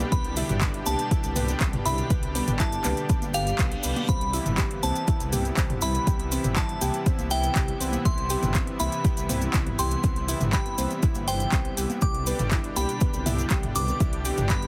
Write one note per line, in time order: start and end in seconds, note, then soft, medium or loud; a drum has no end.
0.00 4.05 B2 medium
0.00 4.05 D3 medium
0.00 11.98 G3 medium
0.00 4.05 D4 medium
0.00 4.05 G4 medium
0.00 cabasa soft
0.12 0.42 C2 loud
0.12 0.19 B3 medium
0.12 0.19 B4 medium
0.12 0.76 B5 loud
0.12 kick loud
0.12 closed hi-hat medium
0.12 cabasa medium
0.24 closed hi-hat soft
0.36 0.44 E4 loud
0.36 0.44 E5 medium
0.36 open hi-hat loud
0.36 cabasa medium
0.49 0.80 G1 loud
0.49 closed hi-hat soft
0.49 mid tom medium
0.49 cabasa soft
0.61 0.73 B4 medium
0.61 0.73 B5 medium
0.61 kick loud
0.61 clap loud
0.61 closed hi-hat medium
0.61 cabasa soft
0.74 closed hi-hat soft
0.86 0.95 C2 medium
0.86 0.94 B3 medium
0.86 0.94 B4 medium
0.86 1.31 A5 medium
0.86 open hi-hat medium
0.86 high conga medium
0.86 cabasa medium
0.99 closed hi-hat soft
0.99 cabasa soft
1.11 1.19 E4 loud
1.11 1.19 E5 medium
1.11 kick loud
1.11 closed hi-hat medium
1.11 cabasa medium
1.24 1.54 C2 loud
1.24 closed hi-hat soft
1.24 cabasa soft
1.36 1.47 B4 medium
1.36 1.47 B5 medium
1.36 mid tom medium
1.36 open hi-hat loud
1.36 high conga medium
1.36 cabasa medium
1.48 closed hi-hat soft
1.48 cabasa soft
1.60 1.77 C2 medium
1.60 1.68 B3 medium
1.60 1.68 B4 medium
1.60 kick medium
1.60 clap loud
1.60 closed hi-hat medium
1.60 cabasa soft
1.73 closed hi-hat soft
1.73 mid tom medium
1.85 2.02 C2 medium
1.85 1.93 E4 loud
1.85 1.93 E5 medium
1.85 2.50 B5 loud
1.85 open hi-hat medium
1.85 cabasa medium
1.98 closed hi-hat soft
1.98 cabasa soft
2.10 2.41 C2 loud
2.10 2.22 B4 medium
2.10 2.22 B5 medium
2.10 kick loud
2.10 closed hi-hat medium
2.10 cabasa medium
2.23 closed hi-hat soft
2.35 2.43 B3 medium
2.35 2.43 B4 medium
2.35 open hi-hat loud
2.35 cabasa medium
2.48 2.78 G1 loud
2.48 closed hi-hat soft
2.48 mid tom medium
2.48 cabasa soft
2.59 2.67 E4 loud
2.59 2.67 E5 medium
2.59 3.24 A5 medium
2.59 kick loud
2.59 clap loud
2.59 closed hi-hat medium
2.59 cabasa medium
2.72 closed hi-hat soft
2.72 cabasa soft
2.84 2.93 C2 medium
2.84 2.96 B4 medium
2.84 2.96 B5 medium
2.84 clap medium
2.84 open hi-hat medium
2.84 high conga medium
2.84 cabasa medium
2.97 closed hi-hat soft
2.97 cabasa soft
3.09 3.17 B3 medium
3.09 3.17 B4 medium
3.09 kick loud
3.09 closed hi-hat medium
3.09 reverse cymbal medium
3.09 cabasa medium
3.22 3.52 G1 loud
3.22 closed hi-hat soft
3.22 high conga medium
3.22 cabasa soft
3.34 3.39 G4 loud
3.34 3.99 F5 loud
3.34 3.39 G5 medium
3.34 open hi-hat loud
3.34 cabasa medium
3.47 closed hi-hat soft
3.47 cabasa soft
3.59 3.76 C2 loud
3.59 3.67 B3 medium
3.59 3.67 B4 medium
3.59 kick loud
3.59 clap loud
3.59 closed hi-hat medium
3.59 cabasa medium
3.72 closed hi-hat soft
3.83 3.92 C2 loud
3.83 3.95 B3 medium
3.83 3.95 B4 medium
3.83 open hi-hat medium
3.83 cabasa loud
3.96 closed hi-hat soft
3.96 high conga medium
3.96 cabasa soft
4.09 4.39 C2 loud
4.09 11.98 C3 medium
4.09 11.98 E3 medium
4.09 11.98 B3 medium
4.09 4.16 C4 medium
4.09 11.98 E4 medium
4.09 4.16 C5 medium
4.09 4.73 B5 loud
4.09 kick loud
4.09 closed hi-hat medium
4.09 cabasa medium
4.21 closed hi-hat soft
4.33 4.41 E4 loud
4.33 4.41 E5 medium
4.33 open hi-hat loud
4.33 cabasa medium
4.46 4.76 G1 loud
4.46 closed hi-hat soft
4.46 mid tom medium
4.46 cabasa soft
4.58 4.69 G4 loud
4.58 4.69 G5 medium
4.58 kick loud
4.58 clap loud
4.58 closed hi-hat medium
4.58 cabasa medium
4.71 closed hi-hat soft
4.83 4.91 C2 medium
4.83 4.91 C4 medium
4.83 4.91 C5 medium
4.83 5.28 A5 medium
4.83 open hi-hat medium
4.83 high conga medium
4.83 cabasa medium
4.96 closed hi-hat soft
4.96 cabasa soft
5.07 5.15 E4 loud
5.07 5.15 E5 medium
5.07 kick loud
5.07 closed hi-hat medium
5.07 cabasa soft
5.20 5.51 C2 loud
5.20 closed hi-hat soft
5.20 cabasa soft
5.33 5.44 G4 loud
5.33 5.44 G5 medium
5.33 mid tom medium
5.33 open hi-hat loud
5.33 high conga medium
5.33 cabasa medium
5.45 closed hi-hat soft
5.45 cabasa soft
5.57 5.74 C2 medium
5.57 5.65 C4 medium
5.57 5.65 C5 medium
5.57 kick loud
5.57 clap loud
5.57 closed hi-hat medium
5.57 cabasa medium
5.70 closed hi-hat soft
5.70 mid tom medium
5.81 5.99 C2 medium
5.81 5.90 E4 loud
5.81 5.90 E5 medium
5.81 6.47 B5 loud
5.81 open hi-hat loud
5.81 cabasa loud
5.95 closed hi-hat soft
5.95 cabasa soft
6.07 6.38 C2 loud
6.07 6.18 G4 loud
6.07 6.18 G5 medium
6.07 kick loud
6.07 closed hi-hat medium
6.07 cabasa medium
6.20 closed hi-hat soft
6.32 6.39 C4 medium
6.32 6.39 C5 medium
6.32 open hi-hat loud
6.32 cabasa loud
6.44 6.75 G1 loud
6.44 closed hi-hat soft
6.44 mid tom loud
6.44 cabasa soft
6.56 6.64 E4 loud
6.56 6.64 E5 medium
6.56 7.21 A5 medium
6.56 kick loud
6.56 clap loud
6.56 closed hi-hat medium
6.56 cabasa soft
6.69 closed hi-hat soft
6.81 6.90 C2 medium
6.81 6.93 G4 loud
6.81 6.93 G5 medium
6.81 open hi-hat loud
6.81 high conga medium
6.81 cabasa loud
6.94 closed hi-hat soft
6.94 cabasa soft
7.06 7.14 C4 medium
7.06 7.14 C5 medium
7.06 kick loud
7.06 closed hi-hat medium
7.06 cabasa medium
7.19 7.49 C2 loud
7.19 closed hi-hat soft
7.19 high conga medium
7.19 cabasa soft
7.31 7.38 E4 loud
7.31 7.38 E5 medium
7.31 7.96 G5 loud
7.31 open hi-hat loud
7.31 cabasa medium
7.43 closed hi-hat soft
7.43 cabasa soft
7.55 7.72 C2 medium
7.55 7.67 G4 loud
7.55 7.67 G5 medium
7.55 kick loud
7.55 clap loud
7.55 closed hi-hat medium
7.55 cabasa medium
7.68 closed hi-hat soft
7.80 7.97 C2 medium
7.80 7.88 C4 medium
7.80 7.88 C5 medium
7.80 open hi-hat loud
7.80 cabasa medium
7.93 closed hi-hat soft
7.93 high conga medium
7.93 cabasa soft
8.05 8.36 C2 loud
8.05 8.13 E4 loud
8.05 8.13 E5 medium
8.05 8.70 C6 loud
8.05 kick loud
8.05 closed hi-hat medium
8.05 cabasa medium
8.18 closed hi-hat soft
8.30 8.41 G4 loud
8.30 8.41 G5 medium
8.30 open hi-hat loud
8.30 cabasa loud
8.43 8.73 G1 loud
8.43 closed hi-hat soft
8.43 mid tom loud
8.43 cabasa soft
8.54 8.62 C4 medium
8.54 8.62 C5 medium
8.54 kick loud
8.54 clap loud
8.54 closed hi-hat medium
8.54 cabasa medium
8.67 closed hi-hat soft
8.80 8.88 C2 medium
8.80 8.87 E4 loud
8.80 8.87 E5 medium
8.80 9.24 B5 medium
8.80 open hi-hat loud
8.80 high conga medium
8.80 cabasa medium
8.92 closed hi-hat soft
8.92 cabasa soft
9.04 9.16 G4 loud
9.04 9.16 G5 medium
9.04 kick loud
9.04 closed hi-hat medium
9.04 cabasa medium
9.17 9.47 C2 loud
9.17 closed hi-hat soft
9.17 cabasa soft
9.29 9.37 C4 medium
9.29 9.37 C5 medium
9.29 mid tom medium
9.29 open hi-hat loud
9.29 high conga medium
9.29 cabasa loud
9.41 closed hi-hat soft
9.41 cabasa soft
9.54 9.71 C2 medium
9.54 9.62 E4 loud
9.54 9.62 E5 medium
9.54 kick loud
9.54 clap loud
9.54 closed hi-hat medium
9.54 cabasa medium
9.67 closed hi-hat soft
9.67 mid tom medium
9.79 9.95 C2 medium
9.79 9.90 G4 loud
9.79 9.90 G5 medium
9.79 10.43 C6 medium
9.79 open hi-hat loud
9.79 cabasa loud
9.91 closed hi-hat soft
9.91 cabasa soft
10.03 10.34 C2 loud
10.03 10.11 C4 medium
10.03 10.11 C5 medium
10.03 kick loud
10.03 closed hi-hat medium
10.03 cabasa medium
10.16 closed hi-hat soft
10.28 10.36 E4 loud
10.28 10.36 E5 medium
10.28 open hi-hat loud
10.28 cabasa loud
10.40 10.71 G1 loud
10.40 closed hi-hat soft
10.40 mid tom loud
10.40 cabasa soft
10.53 10.64 G4 loud
10.53 10.64 G5 medium
10.53 11.18 B5 loud
10.53 kick loud
10.53 clap loud
10.53 closed hi-hat medium
10.53 cabasa medium
10.66 closed hi-hat soft
10.78 10.86 C2 medium
10.78 10.86 C4 medium
10.78 10.86 C5 medium
10.78 open hi-hat loud
10.78 high conga medium
10.78 cabasa medium
10.90 closed hi-hat soft
10.90 cabasa soft
11.03 11.10 E4 loud
11.03 11.10 E5 medium
11.03 kick loud
11.03 closed hi-hat medium
11.03 cabasa medium
11.15 11.46 G1 loud
11.15 closed hi-hat soft
11.15 high conga medium
11.15 cabasa soft
11.28 11.39 C5 medium
11.28 11.92 G5 medium
11.28 11.39 C6 medium
11.28 open hi-hat loud
11.28 cabasa medium
11.40 closed hi-hat soft
11.40 cabasa soft
11.52 11.69 C2 loud
11.52 11.60 C4 medium
11.52 11.60 C5 medium
11.52 kick loud
11.52 clap loud
11.52 closed hi-hat medium
11.52 cabasa medium
11.65 closed hi-hat soft
11.77 11.85 C2 loud
11.77 11.85 G4 medium
11.77 11.85 G5 medium
11.77 open hi-hat loud
11.77 cabasa loud
11.90 closed hi-hat soft
11.90 high conga medium
11.90 cabasa soft
12.01 12.33 C2 loud
12.01 14.67 B2 medium
12.01 14.67 D3 medium
12.01 14.67 G3 medium
12.01 14.67 D4 medium
12.01 12.13 G4 medium
12.01 14.67 G4 medium
12.01 12.13 G5 medium
12.01 12.67 D6 loud
12.01 kick loud
12.01 closed hi-hat medium
12.01 cabasa medium
12.14 closed hi-hat soft
12.27 12.34 B3 medium
12.27 12.34 B4 medium
12.27 open hi-hat loud
12.27 cabasa loud
12.39 12.70 G1 loud
12.39 closed hi-hat soft
12.39 mid tom loud
12.39 cabasa soft
12.51 12.59 E4 loud
12.51 12.59 E5 medium
12.51 kick loud
12.51 clap loud
12.51 closed hi-hat medium
12.51 cabasa soft
12.64 closed hi-hat soft
12.76 12.85 C2 medium
12.76 12.88 G4 loud
12.76 12.88 G5 medium
12.76 13.21 B5 medium
12.76 open hi-hat medium
12.76 high conga medium
12.76 cabasa medium
12.89 closed hi-hat soft
12.89 cabasa soft
13.01 13.09 B3 medium
13.01 13.09 B4 medium
13.01 kick loud
13.01 closed hi-hat medium
13.01 cabasa medium
13.14 13.44 C2 loud
13.14 closed hi-hat soft
13.14 cabasa soft
13.26 13.33 E4 loud
13.26 13.33 E5 medium
13.26 mid tom medium
13.26 open hi-hat loud
13.26 high conga medium
13.26 cabasa medium
13.38 closed hi-hat soft
13.38 cabasa soft
13.50 13.67 C2 medium
13.50 13.62 G4 loud
13.50 13.62 G5 medium
13.50 kick loud
13.50 clap loud
13.50 closed hi-hat medium
13.50 cabasa medium
13.63 closed hi-hat soft
13.63 mid tom medium
13.76 13.92 C2 medium
13.76 13.83 B3 medium
13.76 13.83 B4 medium
13.76 14.40 D6 loud
13.76 open hi-hat loud
13.76 cabasa medium
13.88 closed hi-hat soft
13.88 cabasa soft
14.00 14.31 C2 loud
14.00 14.08 E4 loud
14.00 14.08 E5 medium
14.00 kick loud
14.00 closed hi-hat medium
14.00 cabasa medium
14.13 closed hi-hat soft
14.25 14.36 G4 loud
14.25 14.36 G5 medium
14.25 open hi-hat loud
14.25 cabasa medium
14.37 14.67 G1 loud
14.37 closed hi-hat soft
14.37 mid tom medium
14.37 cabasa soft
14.49 14.57 B3 medium
14.49 14.57 B4 medium
14.49 14.67 B5 loud
14.49 kick loud
14.49 clap loud
14.49 closed hi-hat medium
14.49 cabasa soft
14.62 closed hi-hat soft